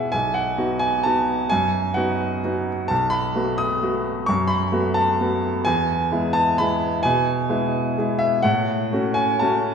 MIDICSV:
0, 0, Header, 1, 2, 480
1, 0, Start_track
1, 0, Tempo, 460123
1, 145, Time_signature, 3, 2, 24, 8
1, 7831, Tempo, 475059
1, 10091, End_track
2, 0, Start_track
2, 0, Title_t, "Grand piano"
2, 0, Program_c, 0, 0
2, 0, Control_c, 0, 64, 127
2, 0, Note_on_c, 0, 47, 51
2, 0, Note_on_c, 0, 59, 37
2, 0, Note_on_c, 0, 64, 37
2, 0, Note_on_c, 0, 68, 41
2, 0, Note_on_c, 0, 76, 69
2, 0, Note_on_c, 0, 78, 72
2, 0, Note_on_c, 0, 80, 69
2, 122, Note_off_c, 0, 80, 0
2, 122, Note_on_c, 0, 80, 83
2, 129, Note_off_c, 0, 76, 0
2, 146, Note_on_c, 0, 35, 53
2, 161, Control_c, 0, 64, 0
2, 164, Note_off_c, 0, 47, 0
2, 166, Note_off_c, 0, 64, 0
2, 166, Note_off_c, 0, 68, 0
2, 169, Note_off_c, 0, 78, 0
2, 172, Note_off_c, 0, 59, 0
2, 310, Control_c, 0, 64, 127
2, 356, Note_on_c, 0, 78, 66
2, 363, Note_off_c, 0, 80, 0
2, 596, Note_off_c, 0, 35, 0
2, 601, Note_on_c, 0, 59, 41
2, 604, Note_on_c, 0, 63, 40
2, 612, Note_on_c, 0, 66, 46
2, 828, Note_on_c, 0, 80, 78
2, 845, Note_off_c, 0, 78, 0
2, 1055, Note_off_c, 0, 59, 0
2, 1056, Note_off_c, 0, 63, 0
2, 1061, Note_off_c, 0, 66, 0
2, 1079, Note_on_c, 0, 81, 75
2, 1088, Note_off_c, 0, 80, 0
2, 1102, Note_on_c, 0, 59, 42
2, 1102, Note_on_c, 0, 63, 39
2, 1109, Note_on_c, 0, 66, 45
2, 1534, Note_off_c, 0, 59, 0
2, 1534, Note_off_c, 0, 63, 0
2, 1537, Note_off_c, 0, 66, 0
2, 1560, Note_on_c, 0, 80, 89
2, 1564, Note_off_c, 0, 81, 0
2, 1581, Note_on_c, 0, 42, 57
2, 1593, Control_c, 0, 64, 0
2, 1726, Control_c, 0, 64, 127
2, 2025, Note_on_c, 0, 78, 72
2, 2041, Note_off_c, 0, 42, 0
2, 2044, Note_off_c, 0, 80, 0
2, 2047, Note_on_c, 0, 63, 44
2, 2048, Note_on_c, 0, 59, 44
2, 2054, Note_on_c, 0, 66, 50
2, 2506, Note_off_c, 0, 59, 0
2, 2506, Note_off_c, 0, 63, 0
2, 2509, Note_off_c, 0, 66, 0
2, 2552, Note_on_c, 0, 59, 41
2, 2553, Note_on_c, 0, 63, 39
2, 2554, Note_on_c, 0, 66, 48
2, 2785, Note_off_c, 0, 78, 0
2, 2995, Note_off_c, 0, 59, 0
2, 2995, Note_off_c, 0, 63, 0
2, 2996, Note_off_c, 0, 66, 0
2, 3005, Note_on_c, 0, 81, 83
2, 3032, Note_on_c, 0, 35, 58
2, 3055, Control_c, 0, 64, 0
2, 3212, Control_c, 0, 64, 127
2, 3233, Note_on_c, 0, 83, 86
2, 3253, Note_off_c, 0, 81, 0
2, 3489, Note_off_c, 0, 35, 0
2, 3498, Note_on_c, 0, 57, 44
2, 3505, Note_on_c, 0, 59, 45
2, 3505, Note_on_c, 0, 66, 50
2, 3730, Note_off_c, 0, 83, 0
2, 3733, Note_on_c, 0, 87, 91
2, 3949, Note_off_c, 0, 57, 0
2, 3952, Note_off_c, 0, 59, 0
2, 3952, Note_off_c, 0, 66, 0
2, 3987, Note_on_c, 0, 57, 44
2, 3996, Note_on_c, 0, 59, 42
2, 4001, Note_on_c, 0, 66, 48
2, 4424, Note_off_c, 0, 57, 0
2, 4428, Note_off_c, 0, 59, 0
2, 4431, Note_off_c, 0, 66, 0
2, 4448, Note_on_c, 0, 85, 84
2, 4462, Note_off_c, 0, 87, 0
2, 4472, Note_on_c, 0, 42, 67
2, 4487, Control_c, 0, 64, 0
2, 4666, Control_c, 0, 64, 127
2, 4669, Note_on_c, 0, 83, 87
2, 4688, Note_off_c, 0, 85, 0
2, 4922, Note_on_c, 0, 57, 45
2, 4923, Note_off_c, 0, 42, 0
2, 4929, Note_on_c, 0, 59, 46
2, 4931, Note_on_c, 0, 66, 52
2, 5157, Note_on_c, 0, 81, 89
2, 5167, Note_off_c, 0, 83, 0
2, 5384, Note_off_c, 0, 57, 0
2, 5387, Note_off_c, 0, 59, 0
2, 5389, Note_off_c, 0, 66, 0
2, 5430, Note_on_c, 0, 57, 44
2, 5431, Note_on_c, 0, 59, 45
2, 5434, Note_on_c, 0, 66, 52
2, 5869, Note_off_c, 0, 57, 0
2, 5869, Note_off_c, 0, 59, 0
2, 5871, Note_off_c, 0, 66, 0
2, 5890, Note_on_c, 0, 80, 97
2, 5899, Note_off_c, 0, 81, 0
2, 5909, Note_on_c, 0, 40, 68
2, 5931, Control_c, 0, 64, 0
2, 6095, Control_c, 0, 64, 127
2, 6372, Note_off_c, 0, 40, 0
2, 6384, Note_on_c, 0, 56, 47
2, 6387, Note_on_c, 0, 64, 54
2, 6393, Note_on_c, 0, 59, 49
2, 6605, Note_on_c, 0, 81, 88
2, 6625, Note_off_c, 0, 80, 0
2, 6845, Note_off_c, 0, 56, 0
2, 6846, Note_off_c, 0, 64, 0
2, 6849, Note_off_c, 0, 59, 0
2, 6866, Note_on_c, 0, 83, 86
2, 6873, Note_off_c, 0, 81, 0
2, 6887, Note_on_c, 0, 56, 46
2, 6895, Note_on_c, 0, 64, 48
2, 6898, Note_on_c, 0, 59, 44
2, 7321, Note_off_c, 0, 56, 0
2, 7325, Note_off_c, 0, 64, 0
2, 7327, Note_off_c, 0, 59, 0
2, 7332, Note_on_c, 0, 80, 88
2, 7352, Note_off_c, 0, 83, 0
2, 7356, Note_on_c, 0, 47, 70
2, 7379, Control_c, 0, 64, 0
2, 7532, Control_c, 0, 64, 127
2, 7813, Note_off_c, 0, 47, 0
2, 7818, Note_on_c, 0, 56, 50
2, 7824, Note_on_c, 0, 59, 50
2, 7826, Note_on_c, 0, 64, 54
2, 8267, Note_off_c, 0, 56, 0
2, 8270, Note_off_c, 0, 59, 0
2, 8271, Note_off_c, 0, 64, 0
2, 8311, Note_on_c, 0, 56, 45
2, 8315, Note_on_c, 0, 59, 45
2, 8324, Note_on_c, 0, 64, 49
2, 8517, Note_on_c, 0, 76, 81
2, 8539, Note_off_c, 0, 80, 0
2, 8745, Note_off_c, 0, 56, 0
2, 8747, Note_off_c, 0, 59, 0
2, 8751, Note_off_c, 0, 64, 0
2, 8759, Note_on_c, 0, 78, 86
2, 8768, Note_off_c, 0, 76, 0
2, 8777, Note_on_c, 0, 45, 64
2, 8803, Control_c, 0, 64, 0
2, 8969, Control_c, 0, 64, 127
2, 9240, Note_off_c, 0, 45, 0
2, 9264, Note_on_c, 0, 57, 48
2, 9269, Note_on_c, 0, 61, 47
2, 9273, Note_on_c, 0, 66, 51
2, 9482, Note_on_c, 0, 80, 82
2, 9496, Note_off_c, 0, 78, 0
2, 9720, Note_off_c, 0, 57, 0
2, 9723, Note_off_c, 0, 61, 0
2, 9725, Note_off_c, 0, 66, 0
2, 9739, Note_on_c, 0, 81, 79
2, 9745, Note_off_c, 0, 80, 0
2, 9758, Note_on_c, 0, 57, 46
2, 9758, Note_on_c, 0, 61, 45
2, 9772, Note_on_c, 0, 66, 49
2, 10091, Note_off_c, 0, 57, 0
2, 10091, Note_off_c, 0, 61, 0
2, 10091, Note_off_c, 0, 66, 0
2, 10091, Note_off_c, 0, 81, 0
2, 10091, End_track
0, 0, End_of_file